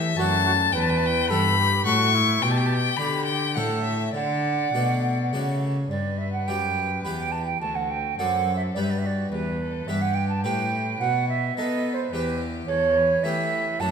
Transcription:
Already playing: harpsichord E3, cello E3, violin E5
0.16 cello F#2, harpsichord F#2 A3 D4 F#4, flute F#4, violin A5
0.45 flute F#4
0.73 cello E2, harpsichord E2, flute B4, violin G5
0.82 violin A5
0.90 violin G5
0.97 violin A5
1.06 violin G5
1.30 cello G2, harpsichord G2 B3 E4 G4, flute A4, violin B5
1.59 flute G4
1.85 cello A2, harpsichord A2 A3 E4 A4, flute F#4, violin C#6
2.15 flute E4
2.42 harpsichord B2, cello B2, flute G4, violin G5
2.51 violin A5
2.58 violin G5
2.66 violin A5
2.74 violin G5
2.97 harpsichord D3 G4 D5, cello D3, flute G4, violin B5
3.25 violin G5
3.54 harpsichord A2 A3 G4 C#5, cello A2, flute A4, violin F#5
3.84 violin E5
4.14 harpsichord D3, cello D3, violin D5, flute F#5
4.74 cello B2, harpsichord B2 A3 F#4 D5
5.32 cello C#3, harpsichord C#3 A3 F#4 D5
5.90 cello G2, harpsichord G2, violin B4, flute D5
6.18 flute E5
6.33 flute F#5
6.47 cello F#2, harpsichord F#2 B3 G4 D5, flute G5
7.03 harpsichord E2 B3 G4 D5, cello E2, flute B5
7.19 flute G5
7.32 flute A5
7.46 flute G5
7.61 harpsichord D2, cello D2, violin F#4, flute A5
7.75 flute F#5
7.90 flute G5
8.18 cello F#2, harpsichord F#2 C4 A4 D5, violin A4, flute F#5
8.57 flute E5
8.74 cello G2, harpsichord G2 B3 G4 B4, violin B4, flute D5
8.82 flute E5
8.90 flute D5
8.99 flute E5
9.04 violin F#4, flute D5
9.30 cello E2, harpsichord E2, violin G4, flute B4
9.62 violin A4
9.87 cello G2, harpsichord G2 B3 G4 B4, violin G4, flute E5
10.02 flute F#5
10.14 flute G5
10.29 flute A5
10.44 cello A2, harpsichord A2 B3 G4 B4, violin B4, flute G5
10.99 cello B2, harpsichord B2, flute F#5
11.29 flute E5
11.57 cello B3, harpsichord B3 D#4 A4, violin B4, flute D#5
11.94 flute C5
12.11 cello E2, harpsichord E2 B3 E4 G4, violin G4, flute B4
12.67 harpsichord E2, cello E2, violin A4, flute C#5
12.98 violin B4
13.24 harpsichord E3 A3 E4 G4, cello E3, flute E5
13.80 harpsichord F#2 A3 D4 F#4, cello F#2, violin A4, flute A5

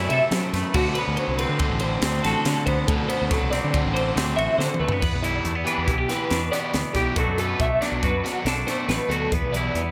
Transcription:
Already playing: clean electric guitar F#2 F#3 A3 E4 A4, overdriven electric guitar F#3 A3 C#4 F#4
0.09 fingered electric bass C3, clean electric guitar A4 E5, ride
0.31 clean electric guitar F#2 C5, fingered electric bass F#3, snare, ride
0.53 fingered electric bass F#2, clean electric guitar A3 B4, snare, ride
0.74 fingered electric bass D2, overdriven electric guitar D3 A3 C4 F#4, clean electric guitar D3 F#4, kick, crash
0.94 clean electric guitar B4, ride
0.99 clean electric guitar B3
1.07 fingered electric bass D2
1.16 clean electric guitar F#3 C5, ride
1.28 fingered electric bass C2
1.38 clean electric guitar C4 B4, ride
1.49 fingered electric bass D3
1.59 overdriven electric guitar D3 A3 C4 F#4, clean electric guitar A4, kick, ride
1.70 fingered electric bass A1
1.80 clean electric guitar D3 C5, ride
2.02 fingered electric bass D2, clean electric guitar C4, snare, ride
2.23 fingered electric bass A1, clean electric guitar F#4 A4, snare, ride
2.45 fingered electric bass D3, clean electric guitar D3, snare, ride
2.66 fingered electric bass D2, clean electric guitar B3 C5, kick, ride
2.87 fingered electric bass D2, overdriven electric guitar D3 A3 C4 F#4, clean electric guitar D3 A4, kick, ride
3.08 clean electric guitar B3 C5, ride
3.22 fingered electric bass D2
3.30 clean electric guitar F#3 A4, kick, snare, ride
3.42 fingered electric bass C2
3.51 clean electric guitar C4 D5, snare, ride
3.64 fingered electric bass D3
3.73 overdriven electric guitar D3 A3 C4 F#4, kick, ride
3.85 fingered electric bass A1
3.93 clean electric guitar D3 C5, ride
4.15 fingered electric bass D2, clean electric guitar C4 D5, snare, ride
4.36 fingered electric bass A1, clean electric guitar F#4 E5, ride
4.57 fingered electric bass D3, clean electric guitar D3 C5, snare
4.74 mid tom
4.79 fingered electric bass D2, clean electric guitar A3 B4
4.88 clean electric guitar B3, floor tom
5.00 clean electric guitar E2 B3 B4, fingered electric bass E2, kick, crash
5.13 fingered electric bass B1
5.22 overdriven electric guitar E3 B3 E4 G4, clean electric guitar E4 D5, closed hi-hat
5.45 fingered electric bass E2, clean electric guitar A3, closed hi-hat
5.55 clean electric guitar B3
5.65 clean electric guitar E3 D4 B4, overdriven electric guitar E3 B3 E4 G4, closed hi-hat
5.78 fingered electric bass E2
5.86 fingered electric bass B1, clean electric guitar E4 G4, kick, closed hi-hat
5.98 clean electric guitar G4
6.09 overdriven electric guitar E3 B3 E4 G4, clean electric guitar B4, snare, closed hi-hat
6.30 fingered electric bass E2, clean electric guitar B2 D4, snare, closed hi-hat
6.51 overdriven electric guitar E3 B3 E4 G4, clean electric guitar B3 D5, snare, closed hi-hat
6.73 fingered electric bass D2, clean electric guitar E2 B3, snare, closed hi-hat
6.93 fingered electric bass B1, overdriven electric guitar E3 B3 E4 G4, clean electric guitar G4, kick, snare, closed hi-hat
7.16 fingered electric bass B1, clean electric guitar B2 F#3 A3 D4 F#4 A4, kick, closed hi-hat
7.27 fingered electric bass F#2
7.37 overdriven electric guitar F#3 B3 D4 F#4, clean electric guitar A4 B4, closed hi-hat
7.60 fingered electric bass B1, clean electric guitar A3 E5, kick, closed hi-hat
7.81 clean electric guitar F#3 D4 D5, overdriven electric guitar F#3 B3 D4 F#4, snare, closed hi-hat
7.92 fingered electric bass B1
8.03 fingered electric bass F#2, clean electric guitar F#4 B4, kick, closed hi-hat
8.24 overdriven electric guitar F#3 B3 D4 F#4, clean electric guitar F#4, snare, closed hi-hat
8.45 fingered electric bass B1, clean electric guitar F#2 D4 A4, snare, closed hi-hat
8.67 overdriven electric guitar F#3 B3 D4 F#4, clean electric guitar A3 C5, snare, closed hi-hat
8.88 fingered electric bass A1, clean electric guitar B2 A3 B4, snare, closed hi-hat
9.08 fingered electric bass D2, overdriven electric guitar F#3 B3 D4 F#4, clean electric guitar F#4 A4, closed hi-hat
9.31 fingered electric bass E2, clean electric guitar E2 B3 B4, kick, closed hi-hat
9.42 fingered electric bass B1
9.52 overdriven electric guitar E3 G3 B3 E4, clean electric guitar D5, closed hi-hat
9.56 clean electric guitar E4
9.74 fingered electric bass E2, clean electric guitar B3, closed hi-hat

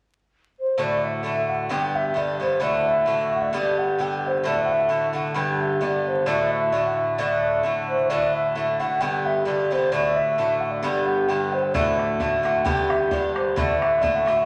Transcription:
0.60 flute C5
0.78 bouzouki A2 D3 A3 F#4
0.82 flute D5
1.04 flute E5
1.23 bouzouki A2 D3 A3 F#4
1.49 flute F#5
1.69 bouzouki G2 D3 B3 G4, flute G5
1.96 flute E5
2.14 bouzouki G2 D3 B3 G4, flute D5
2.40 bouzouki G2 D3 B3 G4, flute C5
2.60 bouzouki A2 D3 A3 F#4, flute D5
2.88 flute E5
3.06 bouzouki A2 D3 A3 F#4
3.32 flute F#5
3.42 flute D5
3.53 bouzouki G2 D3 B3 G4, flute D5
3.78 flute F#5
3.99 bouzouki G2 D3 B3 G4, flute G5
4.27 flute C5
4.44 bouzouki A2 D3 A3 F#4
4.48 flute D5
4.64 flute F#5
4.72 flute E5
4.89 bouzouki A2 D3 A3 F#4
5.13 bouzouki A2 D3 A3 F#4, flute F#5
5.35 bouzouki G2 D3 B3 G4, flute G5
5.61 flute E5
5.81 bouzouki G2 D3 B3 G4, flute D5
6.08 flute C5
6.26 bouzouki A2 D3 A3 F#4, flute D5
6.51 flute E5
6.72 bouzouki A2 D3 A3 F#4, flute D5
6.85 flute F#5
6.98 flute E5
7.18 bouzouki A2 D3 A3 F#4, flute D5
7.63 bouzouki A2 D3 A3 F#4
7.88 flute C5
8.09 bouzouki A2 D3 A3 F#4, flute D5
8.34 flute E5
8.55 bouzouki A2 D3 A3 F#4
8.80 bouzouki A2 D3 A3 F#4, flute F#5
9.00 bouzouki G2 D3 B3 G4, flute G5
9.26 flute E5
9.45 bouzouki G2 D3 B3 G4, flute D5
9.70 bouzouki G2 D3 B3 G4, flute C5
9.92 bouzouki A2 D3 A3 F#4, flute D5
10.16 flute E5
10.38 bouzouki A2 D3 A3 F#4
10.60 flute F#5
10.70 flute D5
10.81 bouzouki G2 D3 B3 G4, flute D5
11.06 flute F#5
11.29 bouzouki G2 D3 B3 G4, flute G5
11.53 flute C5
11.73 bouzouki A2 D3 A3 F#4, flute D5, bodhran
11.98 flute E5, bodhran
12.20 bouzouki A2 D3 A3 F#4, bodhran
12.43 bouzouki A2 D3 A3 F#4, flute F#5, bodhran
12.64 bouzouki G2 D3 B3 G4, flute G5, bodhran
12.90 flute E5, bodhran
13.11 bouzouki G2 D3 B3 G4, flute D5, bodhran
13.36 flute C5, bodhran
13.56 bouzouki A2 D3 A3 F#4, flute D5, bodhran
13.82 flute E5, bodhran
14.01 bouzouki A2 D3 A3 F#4, flute D5, bodhran
14.15 flute F#5
14.26 bouzouki A2 D3 A3 F#4, flute E5, bodhran

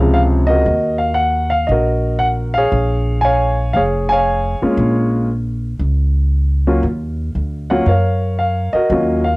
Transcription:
Already playing: upright bass C#2, grand piano G#4 C#5 F5
0.01 grand piano C3 C#3 F3 G#3
0.14 grand piano F5
0.47 grand piano F#4 A#4 D#5
0.66 upright bass D#2
0.98 grand piano F5
1.14 grand piano F#5
1.50 grand piano F5
1.67 upright bass A#1, grand piano D#5
1.71 grand piano F#4 A#4
2.19 grand piano F#5
2.54 grand piano G#4 F5
2.58 grand piano C#5
2.72 upright bass A#1
3.21 grand piano C#5 F5 G#5
3.73 upright bass F1, grand piano G#4 C#5 F5
4.09 grand piano C#5 F5 G#5
4.62 grand piano G#3 A#3 C#4 F4, muted upright bass stroke
4.77 upright bass A#1
5.79 upright bass C#2
6.67 grand piano F#3 A#3 C#4 F4
6.83 upright bass D#2
7.35 upright bass D2
7.70 grand piano F#3 A#3 C#4 F4 F#5
7.86 upright bass F#2, grand piano A#4 C#5 F5
8.39 grand piano F5
8.73 grand piano F#4 A#4 D#5, muted upright bass stroke
8.90 upright bass D#2, grand piano F#3 A#3 C#4 F4
9.24 grand piano F5

